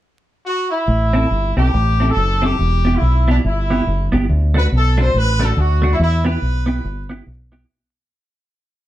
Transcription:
0.45 F#4
0.71 E4
0.88 A1
1.13 C4 E4 A4
1.31 G1
1.56 B1 C4 E4 G4 A4
1.73 A1
2.00 C4 E4 A4
2.09 A4
2.16 F#1
2.42 C4 E4 G4 A4
2.59 E1
2.85 B3 E4 G4
2.95 E4
3.01 B1
3.28 B3 D4 E4 G4
3.44 G1 E4
3.70 B3 E4 G4
3.87 F#1
4.12 G1 B3 E4 G4
4.29 D2
4.54 A3 D4 F#4 B4
4.72 B1 A4
4.97 A3 D4 F#4 C5
5.14 A1 B4
5.40 A3 D4 F#4 A4
5.57 D2 F#4
5.82 A3 D4 F#4
5.93 E4
5.99 E2 E4
6.24 B3 E4 G4 B4
6.42 B1
6.66 B3 E4 G4
6.84 G1
7.10 B3 E4 G4
7.26 B1
7.52 B3 E4 G4

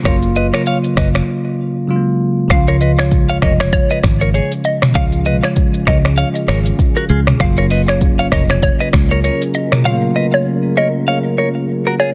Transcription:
0.03 F#1 C#3 F#3 A#3 A#4 C#5, finger snap, kick, cross-stick, shaker
0.08 F4
0.22 shaker
0.36 B4 D#5, shaker
0.54 A#4 C#5, finger snap, cross-stick, shaker
0.66 C#5 F5, shaker
0.84 shaker
0.97 F#1 B4 D#5, finger snap, kick, cross-stick, shaker
1.15 finger snap, cross-stick, shaker
1.88 C#3 F#3 G#3 F4
1.96 A#3
2.48 C#2 C#3 F3 G#3 C#4 F4 G#4 F5, finger snap, kick, cross-stick, shaker
2.53 F4
2.67 A#4 C#5, shaker
2.81 B4 D#5, shaker
2.98 C#5, finger snap, cross-stick, shaker
3.11 kick, shaker
3.29 C#5 F5, shaker
3.42 F1 A#4 C#5 D#5, finger snap, kick, cross-stick
3.60 C#5, finger snap, cross-stick, shaker
3.73 C#5, kick, shaker
3.91 B4 D#5, shaker
4.03 G#1, finger snap, kick, cross-stick, shaker
4.21 A#4 C#5, shaker
4.34 G#4 C#5, shaker
4.52 shaker
4.64 D#5, shaker
4.82 finger snap, cross-stick, mid tom, shaker
4.93 C#2 C#3 F3 G#3 C#5 F5, finger snap, kick, cross-stick, shaker
4.98 F4
5.12 shaker
5.26 B4 D#5, shaker
5.43 C#5, finger snap, cross-stick, shaker
5.56 kick, shaker
5.74 shaker
5.87 C#2 A#4 C#5 D#5, finger snap, kick, cross-stick
6.05 finger snap, cross-stick, shaker
6.18 C#5 F5, shaker
6.35 shaker
6.48 G#1 A#4 C#5, finger snap, cross-stick, shaker
6.66 shaker
6.79 kick, shaker
6.97 F#4 A#4, shaker
7.09 C#2 F4 G#4, shaker
7.27 finger snap, cross-stick, mid tom, shaker
7.38 F#1 C#3 F#3 A#3 A#4 F5, finger snap, kick, cross-stick, shaker
7.43 F4
7.57 A#4 C#5, shaker
7.70 B4 D#5, open hi-hat, shaker
7.88 C#5, finger snap, cross-stick, shaker
8.01 kick, shaker
8.19 C#5 F5, shaker
8.32 F1 A#4 C#5 D#5, finger snap, kick, cross-stick
8.49 C#5, finger snap, cross-stick, shaker
8.62 C#5, kick, shaker
8.80 B4 D#5, shaker
8.93 C#2, finger snap, kick, cross-stick, open hi-hat, shaker
9.11 A#4 C#5, shaker
9.24 A#4 C#5, shaker
9.42 shaker
9.54 D#5, shaker
9.72 finger snap, cross-stick, mid tom, shaker
9.83 C#3 F#3 A3 C#5 F5
9.88 F4
9.93 A#3
10.16 B4 D#5
10.34 C#5
10.77 A#4 C#5 D#5
11.08 C#5 F5
11.38 A#4 C#5
11.87 F#4 A#4
12.00 F4 G#4 C#5

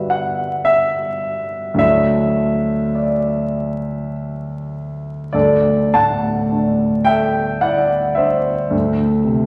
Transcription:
Already playing: G1 G3 D4 F#4 B4 E5
0.10 F#5
0.65 E5
1.74 D2 F#3 D4 E4
1.78 C#5 E5
2.95 D5
5.33 D2 A4 D5
5.94 A2 F#5 A5
6.52 D4
7.05 A4 E5 G5
7.61 E4 D5 F#5
8.15 D4 C5 E5
8.70 D2
9.24 C3

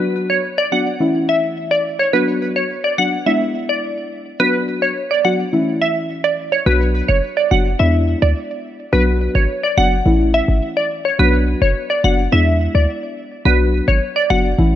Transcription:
Already playing: F#3 B3 D4 F#4
0.30 C#5
0.58 D5
0.72 F#3 B3 D4 F#4 F#5
1.00 E3 A3 C#4 E4
1.29 E5
1.71 D5
1.99 C#5
2.13 F#3 B3 D4 F#4 B4
2.56 C#5
2.84 D5
2.98 F#3 B3 D4 F#4 F#5
3.26 G#3 B3 D4 E4 E5
3.69 D5
4.40 F#3 B3 D4 F#4 B4
4.82 C#5
5.11 D5
5.25 F#3 B3 D4 F#4 F#5
5.53 E3 A3 C#4 E4
5.82 E5
6.24 D5
6.52 C#5
6.66 B1 F#3 B3 D4 F#4 B4
7.08 F#1 C#5
7.37 D5
7.51 F#1 F#3 B3 D4 F#4 F#5
7.79 E2 G#3 B3 D4 E4 E5
8.22 D2 D5
8.92 B1 F#3 B3 D4 F#4 B4
9.35 G#1 C#5
9.63 D5
9.77 F#1 F#3 B3 D4 F#4 F#5
10.06 A1 E3 A3 C#4 E4
10.34 E5
10.48 G#1
10.77 D5
11.05 C#5
11.19 B1 F#3 B3 D4 F#4 B4
11.62 F#1 C#5
11.90 D5
12.04 F#1 F#3 B3 D4 F#4 F#5
12.32 E2 G#3 B3 D4 E4 E5
12.75 D2 D5
13.45 B1 F#3 B3 D4 F#4 B4
13.88 G#1 C#5
14.16 D5
14.30 F#1 F#3 B3 D4 F#4 F#5
14.59 A1 E3 A3 C#4 E4

